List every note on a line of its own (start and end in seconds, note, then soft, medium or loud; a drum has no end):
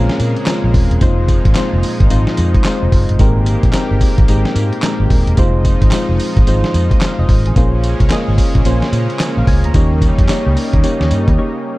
0.00 7.52 A#2 medium
0.00 0.99 C#3 medium
0.00 0.46 G#3 loud
0.00 7.52 G#3 medium
0.00 0.99 A#3 medium
0.00 0.46 C4 medium
0.00 0.47 C#4 medium
0.00 0.47 F4 medium
0.00 0.47 A#4 loud
0.09 snare medium
0.20 0.34 A#2 loud
0.20 closed hi-hat medium
0.20 tambourine medium
0.36 closed hi-hat soft
0.46 0.87 G#3 medium
0.46 0.87 C4 medium
0.46 0.88 C#4 medium
0.46 0.88 F4 medium
0.46 0.88 A#4 medium
0.46 snare loud
0.46 clap medium
0.46 closed hi-hat medium
0.46 tambourine medium
0.64 0.72 A#1 medium
0.74 0.88 D#1 loud
0.74 kick loud
0.74 open hi-hat medium
0.91 0.99 E1 medium
0.91 closed hi-hat medium
1.01 1.38 F1 loud
1.01 3.17 F3 medium
1.01 1.42 G#3 medium
1.01 1.43 C4 medium
1.01 3.17 D#4 medium
1.01 1.42 D#4 medium
1.01 1.43 F4 medium
1.01 1.43 C5 medium
1.01 kick loud
1.01 closed hi-hat medium
1.01 tambourine medium
1.28 kick loud
1.28 closed hi-hat medium
1.28 tambourine medium
1.45 1.54 G#1 medium
1.45 kick loud
1.45 closed hi-hat medium
1.55 1.97 G#3 medium
1.55 1.97 C4 medium
1.55 1.97 D#4 medium
1.55 1.97 F4 medium
1.55 1.97 C5 medium
1.55 snare loud
1.55 clap medium
1.55 closed hi-hat medium
1.55 tambourine medium
1.73 1.82 F1 medium
1.83 open hi-hat medium
1.83 tambourine medium
2.00 2.09 G#1 medium
2.00 kick loud
2.00 closed hi-hat medium
2.10 2.25 G#1 loud
2.10 2.51 G#3 medium
2.10 2.51 C4 medium
2.10 2.51 D#4 medium
2.10 2.52 F4 medium
2.10 2.52 C5 medium
2.10 closed hi-hat medium
2.10 tambourine medium
2.27 snare medium
2.37 2.52 F2 loud
2.37 closed hi-hat medium
2.37 tambourine medium
2.54 kick loud
2.54 closed hi-hat soft
2.64 3.06 G#3 medium
2.64 3.06 C4 medium
2.64 3.06 D#4 medium
2.64 3.06 F4 medium
2.64 3.07 C5 medium
2.64 snare medium
2.64 clap medium
2.64 closed hi-hat medium
2.64 tambourine medium
2.83 2.91 F1 medium
2.92 3.06 F#1 loud
2.92 kick loud
2.92 open hi-hat medium
3.09 3.18 G1 medium
3.09 closed hi-hat medium
3.19 3.56 G#1 loud
3.19 3.60 G#3 medium
3.19 5.36 A#3 medium
3.19 3.61 C4 medium
3.19 3.61 D#4 medium
3.19 5.36 G4 medium
3.19 3.61 G4 medium
3.19 3.61 A#4 loud
3.19 kick loud
3.19 closed hi-hat medium
3.19 tambourine medium
3.46 closed hi-hat medium
3.46 tambourine medium
3.63 3.72 A#1 medium
3.63 kick loud
3.63 closed hi-hat medium
3.73 4.15 G#3 medium
3.73 4.15 C4 medium
3.73 4.15 D#4 medium
3.73 4.15 G4 medium
3.73 4.15 A#4 loud
3.73 snare loud
3.73 clap medium
3.73 closed hi-hat medium
3.73 tambourine loud
3.91 4.00 G1 medium
4.01 kick loud
4.01 open hi-hat medium
4.01 tambourine medium
4.18 4.27 G#1 medium
4.18 kick loud
4.18 closed hi-hat medium
4.28 4.43 G#1 loud
4.28 4.69 G#3 loud
4.28 4.70 C4 medium
4.28 4.70 D#4 medium
4.28 4.70 G4 medium
4.28 4.70 A#4 medium
4.28 closed hi-hat medium
4.28 tambourine medium
4.45 snare medium
4.56 4.70 G#2 loud
4.56 closed hi-hat medium
4.56 tambourine medium
4.73 closed hi-hat soft
4.82 5.24 G#3 medium
4.82 5.24 C4 medium
4.82 5.24 D#4 medium
4.82 5.24 G4 medium
4.82 5.25 A#4 loud
4.82 snare loud
4.82 clap medium
4.82 closed hi-hat medium
4.82 tambourine medium
5.00 5.08 G#1 medium
5.10 5.25 D#1 medium
5.10 kick loud
5.10 open hi-hat medium
5.27 5.36 E1 medium
5.27 closed hi-hat medium
5.37 5.74 F1 loud
5.37 7.54 F3 medium
5.37 5.79 G#3 loud
5.37 5.79 C4 medium
5.37 7.54 D#4 medium
5.37 5.79 D#4 medium
5.37 5.79 F4 medium
5.37 5.79 C5 loud
5.37 kick loud
5.37 closed hi-hat medium
5.37 tambourine medium
5.65 kick medium
5.65 closed hi-hat medium
5.65 tambourine medium
5.82 5.90 G#1 loud
5.82 kick loud
5.82 closed hi-hat medium
5.91 6.33 G#3 medium
5.91 6.33 C4 medium
5.91 6.33 D#4 medium
5.91 6.34 F4 medium
5.91 6.34 C5 loud
5.91 snare loud
5.91 clap medium
5.91 closed hi-hat medium
5.91 tambourine loud
6.09 6.18 F1 medium
6.19 open hi-hat medium
6.19 tambourine medium
6.37 6.45 G#1 loud
6.37 kick loud
6.37 closed hi-hat medium
6.47 6.61 G#1 loud
6.47 6.88 G#3 medium
6.47 6.88 C4 medium
6.47 6.88 D#4 medium
6.47 6.88 F4 medium
6.47 6.88 C5 loud
6.47 closed hi-hat medium
6.47 tambourine medium
6.64 snare medium
6.74 6.88 F2 loud
6.74 closed hi-hat medium
6.74 tambourine medium
6.91 kick loud
6.91 closed hi-hat soft
7.01 7.18 F5 medium
7.01 snare loud
7.01 clap medium
7.01 closed hi-hat medium
7.01 tambourine medium
7.19 7.27 F1 medium
7.19 7.29 D#5 medium
7.29 7.43 G#1 medium
7.29 7.45 C5 medium
7.29 kick loud
7.29 open hi-hat medium
7.46 7.54 A1 medium
7.46 7.56 G#4 medium
7.46 closed hi-hat medium
7.56 7.93 A#1 loud
7.56 9.72 C#3 medium
7.56 9.72 G#3 medium
7.56 11.78 A#3 medium
7.56 7.97 A#3 medium
7.56 9.72 C#4 medium
7.56 7.97 C#4 medium
7.56 7.97 F4 medium
7.56 7.97 G#4 medium
7.56 7.98 C5 medium
7.56 kick loud
7.56 closed hi-hat medium
7.56 tambourine medium
7.83 closed hi-hat medium
7.83 tambourine medium
8.00 8.09 C2 medium
8.00 kick loud
8.00 closed hi-hat medium
8.10 8.51 A#3 medium
8.10 8.52 C#4 medium
8.10 8.52 F4 medium
8.10 8.52 G#4 medium
8.10 8.52 D#5 medium
8.10 snare loud
8.10 clap medium
8.10 closed hi-hat medium
8.10 tambourine medium
8.28 8.36 G#1 medium
8.38 kick medium
8.38 open hi-hat medium
8.38 tambourine medium
8.55 8.63 A#1 medium
8.55 kick loud
8.55 closed hi-hat medium
8.65 8.79 A#1 loud
8.65 9.06 A#3 loud
8.65 9.06 C#4 medium
8.65 9.06 F4 medium
8.65 9.06 G#4 medium
8.65 9.07 C5 loud
8.65 closed hi-hat medium
8.65 tambourine medium
8.82 snare medium
8.92 9.06 A#2 loud
8.92 closed hi-hat medium
8.92 tambourine medium
9.10 closed hi-hat soft
9.19 snare loud
9.19 clap medium
9.19 closed hi-hat medium
9.19 tambourine medium
9.37 9.45 A#1 loud
9.37 9.47 F5 medium
9.47 9.61 C#2 loud
9.47 9.63 G#5 medium
9.47 kick loud
9.47 open hi-hat medium
9.64 9.73 D2 medium
9.64 9.91 A#5 medium
9.64 closed hi-hat medium
9.74 10.11 D#2 loud
9.74 11.78 C#3 medium
9.74 11.78 G3 medium
9.74 10.15 A#3 medium
9.74 10.15 C#4 medium
9.74 11.78 D#4 medium
9.74 10.15 D#4 medium
9.74 10.16 G4 medium
9.74 10.16 C#5 loud
9.74 kick loud
9.74 closed hi-hat medium
9.74 tambourine medium
10.02 kick medium
10.02 closed hi-hat medium
10.02 tambourine medium
10.18 10.27 F2 medium
10.18 kick loud
10.18 closed hi-hat medium
10.29 10.69 A#3 medium
10.29 10.70 C#4 medium
10.29 10.70 D#4 medium
10.29 10.70 G4 medium
10.29 10.70 C#5 medium
10.29 snare medium
10.29 clap medium
10.29 closed hi-hat medium
10.29 tambourine loud
10.46 10.55 C#2 medium
10.57 open hi-hat medium
10.57 tambourine medium
10.73 10.82 D#2 medium
10.73 kick loud
10.73 closed hi-hat medium
10.83 11.24 A#3 medium
10.83 11.24 C#4 medium
10.83 11.24 D#4 medium
10.83 11.24 G4 medium
10.83 11.25 C#5 medium
10.83 closed hi-hat medium
10.83 tambourine medium
11.01 11.09 D#2 medium
11.01 snare medium
11.11 11.25 G2 medium
11.11 closed hi-hat medium
11.11 tambourine medium
11.28 11.36 D#2 medium
11.28 kick loud
11.28 closed hi-hat soft
11.38 11.78 A#3 medium
11.38 11.78 C#4 medium
11.38 11.78 D#4 medium
11.38 11.78 G4 medium
11.38 11.78 C#5 medium